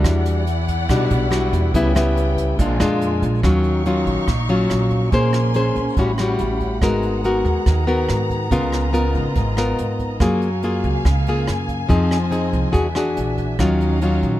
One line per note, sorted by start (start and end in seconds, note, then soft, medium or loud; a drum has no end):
0.00 0.44 G3 medium
0.00 0.44 D4 medium
0.00 2.56 E4 medium
0.00 0.44 F#4 medium
0.00 1.72 D5 medium
0.04 0.85 E2 medium
0.04 0.88 E3 medium
0.04 1.72 F#5 loud
0.04 kick medium
0.04 cross-stick medium
0.04 closed hi-hat medium
0.26 closed hi-hat soft
0.47 closed hi-hat soft
0.68 kick soft
0.68 closed hi-hat soft
0.89 1.09 B1 loud
0.89 1.72 B2 medium
0.89 1.29 G3 medium
0.89 1.29 D4 medium
0.89 1.29 F#4 medium
0.89 kick medium
0.89 cross-stick medium
0.89 closed hi-hat medium
1.10 1.50 B1 medium
1.10 closed hi-hat soft
1.31 1.72 G3 medium
1.31 1.72 D4 medium
1.31 1.72 F#4 medium
1.31 cross-stick medium
1.31 closed hi-hat soft
1.53 1.74 E2 medium
1.53 kick soft
1.53 closed hi-hat soft
1.74 2.55 C#2 loud
1.74 2.57 C#3 medium
1.74 1.92 G3 medium
1.74 1.92 B3 medium
1.74 1.93 E4 medium
1.74 2.59 B4 medium
1.74 2.59 C#5 medium
1.74 2.59 G5 medium
1.74 kick medium
1.74 closed hi-hat medium
1.95 2.57 G3 medium
1.95 2.58 B3 medium
1.95 2.58 E4 medium
1.95 cross-stick medium
1.95 closed hi-hat medium
2.17 closed hi-hat soft
2.38 kick soft
2.38 closed hi-hat soft
2.59 2.78 A#1 loud
2.59 3.42 A#2 medium
2.59 2.77 G#3 medium
2.59 2.78 D4 medium
2.59 3.43 F4 medium
2.59 2.78 F4 medium
2.59 3.43 A#4 medium
2.59 3.43 D5 medium
2.59 3.43 G#5 medium
2.59 kick medium
2.59 closed hi-hat medium
2.80 3.20 F2 loud
2.80 3.40 G#3 medium
2.80 3.40 D4 medium
2.80 3.40 F4 medium
2.80 cross-stick medium
2.80 closed hi-hat soft
3.02 closed hi-hat soft
3.22 3.42 A#1 medium
3.22 kick soft
3.22 closed hi-hat soft
3.43 4.03 D#2 medium
3.43 4.26 D#3 medium
3.43 3.82 F#3 medium
3.43 3.83 C#4 medium
3.43 5.11 D#4 medium
3.43 3.83 F4 medium
3.43 5.11 F5 medium
3.43 5.11 C#6 medium
3.43 kick medium
3.43 cross-stick medium
3.43 closed hi-hat soft
3.64 closed hi-hat soft
3.86 4.28 F#3 soft
3.86 4.28 C#4 medium
3.86 4.29 F4 medium
3.86 closed hi-hat soft
4.06 4.16 A#1 medium
4.06 kick soft
4.06 closed hi-hat soft
4.28 4.67 A#1 medium
4.28 5.11 A#2 soft
4.28 kick medium
4.28 cross-stick medium
4.28 closed hi-hat soft
4.49 5.10 F#3 medium
4.49 5.10 C#4 medium
4.49 5.10 F4 medium
4.49 closed hi-hat soft
4.70 5.10 A#1 medium
4.70 cross-stick medium
4.70 closed hi-hat soft
4.90 kick soft
4.90 closed hi-hat soft
5.12 5.72 A#1 medium
5.12 5.96 A#3 medium
5.12 5.52 C#4 medium
5.12 6.81 C#4 medium
5.12 5.52 G#4 medium
5.12 5.97 A#4 medium
5.12 5.52 C5 medium
5.12 5.97 G#5 medium
5.12 5.97 C6 medium
5.12 kick medium
5.12 closed hi-hat soft
5.33 cross-stick medium
5.33 closed hi-hat soft
5.54 5.96 C#4 medium
5.54 5.96 G#4 medium
5.54 5.96 C5 medium
5.54 closed hi-hat soft
5.75 5.86 A#1 medium
5.75 kick soft
5.75 closed hi-hat soft
5.97 6.37 A1 medium
5.97 6.81 A2 soft
5.97 6.11 G3 medium
5.97 6.11 C#4 soft
5.97 6.11 F#4 medium
5.97 8.49 F#5 medium
5.97 6.81 B5 medium
5.97 kick medium
5.97 closed hi-hat soft
6.18 6.80 G3 medium
6.18 6.80 C#4 medium
6.18 6.80 F#4 medium
6.18 cross-stick medium
6.18 closed hi-hat soft
6.39 6.79 A1 medium
6.39 closed hi-hat soft
6.60 kick soft
6.60 closed hi-hat soft
6.81 7.41 G#1 medium
6.81 7.65 G#3 medium
6.81 10.18 B3 medium
6.81 7.21 B3 medium
6.81 7.22 F#4 medium
6.81 8.50 G#4 medium
6.81 7.22 A#4 medium
6.81 10.17 A#5 medium
6.81 kick medium
6.81 cross-stick medium
6.81 closed hi-hat soft
7.03 closed hi-hat soft
7.24 7.85 B3 soft
7.24 7.85 F#4 medium
7.24 7.85 A#4 medium
7.24 closed hi-hat soft
7.45 7.55 D#2 medium
7.45 kick soft
7.45 closed hi-hat soft
7.66 8.06 D#2 medium
7.66 8.50 D#3 medium
7.66 kick medium
7.66 cross-stick medium
7.66 closed hi-hat soft
7.87 8.48 B3 medium
7.87 8.48 F#4 medium
7.87 8.48 A#4 medium
7.87 closed hi-hat soft
8.09 8.49 G#2 medium
8.09 cross-stick medium
8.09 closed hi-hat soft
8.30 kick soft
8.30 closed hi-hat soft
8.51 9.11 C#2 medium
8.51 9.34 C#3 medium
8.51 8.91 B3 medium
8.51 8.91 F4 medium
8.51 10.20 F4 medium
8.51 8.91 A#4 medium
8.51 10.20 D#5 medium
8.51 kick medium
8.51 closed hi-hat soft
8.73 cross-stick medium
8.73 closed hi-hat soft
8.93 9.54 B3 medium
8.93 9.54 F4 medium
8.93 9.54 A#4 medium
8.93 closed hi-hat soft
9.15 9.25 G#1 medium
9.15 kick soft
9.15 closed hi-hat soft
9.35 9.75 G#1 medium
9.35 10.19 G#2 soft
9.35 kick medium
9.35 closed hi-hat soft
9.57 10.18 B3 medium
9.57 10.18 F4 medium
9.57 10.18 A#4 medium
9.57 cross-stick medium
9.57 closed hi-hat soft
9.78 10.18 G#1 medium
9.78 closed hi-hat soft
9.99 kick soft
9.99 closed hi-hat soft
10.20 10.80 F#2 medium
10.20 11.04 F#3 medium
10.20 10.48 A#3 medium
10.20 11.89 A#3 medium
10.20 10.48 F4 medium
10.20 10.49 G#4 medium
10.20 11.90 F5 medium
10.20 13.57 G#5 medium
10.20 kick medium
10.20 cross-stick medium
10.20 closed hi-hat soft
10.42 closed hi-hat soft
10.63 11.06 A#3 medium
10.63 11.06 F4 medium
10.63 11.06 G#4 medium
10.63 closed hi-hat soft
10.84 10.94 C#2 medium
10.84 kick soft
10.84 closed hi-hat soft
11.05 11.45 C#2 medium
11.05 11.89 C#3 soft
11.05 kick medium
11.05 cross-stick medium
11.05 closed hi-hat soft
11.27 11.88 A#3 medium
11.27 11.88 F4 medium
11.27 11.88 G#4 medium
11.27 closed hi-hat soft
11.48 11.88 F#2 medium
11.48 cross-stick medium
11.48 closed hi-hat soft
11.69 kick soft
11.69 closed hi-hat soft
11.89 12.50 F2 medium
11.89 12.72 F3 medium
11.89 12.17 C4 medium
11.89 12.74 C4 medium
11.89 12.17 D#4 medium
11.89 12.74 F4 medium
11.89 12.18 G#4 medium
11.89 12.74 D#5 medium
11.89 kick medium
11.89 closed hi-hat soft
12.11 cross-stick medium
12.11 closed hi-hat soft
12.31 12.72 C4 soft
12.31 12.72 D#4 soft
12.31 12.71 G#4 medium
12.31 closed hi-hat soft
12.53 12.63 C2 medium
12.53 kick soft
12.53 closed hi-hat soft
12.72 13.14 E2 medium
12.72 13.56 E3 soft
12.72 12.86 D4 soft
12.72 13.58 D4 medium
12.72 12.86 F#4 soft
12.72 12.86 G#4 medium
12.72 13.59 E5 medium
12.72 kick medium
12.72 closed hi-hat soft
12.95 13.56 D4 medium
12.95 13.56 F#4 medium
12.95 13.57 G#4 medium
12.95 cross-stick medium
12.95 closed hi-hat soft
13.17 13.57 A#1 medium
13.17 closed hi-hat soft
13.38 kick soft
13.38 closed hi-hat soft
13.59 14.19 D#2 medium
13.59 14.40 D#3 medium
13.59 13.99 F#3 medium
13.59 14.40 C#4 medium
13.59 13.99 C#4 medium
13.59 13.99 F4 medium
13.59 14.40 D#5 medium
13.59 14.40 F5 medium
13.59 kick medium
13.59 cross-stick medium
13.59 closed hi-hat soft
13.81 closed hi-hat soft
14.01 14.40 F#3 medium
14.01 14.40 C#4 soft
14.01 14.40 F4 medium
14.01 closed hi-hat soft
14.23 14.33 A#1 medium
14.23 kick soft
14.23 closed hi-hat soft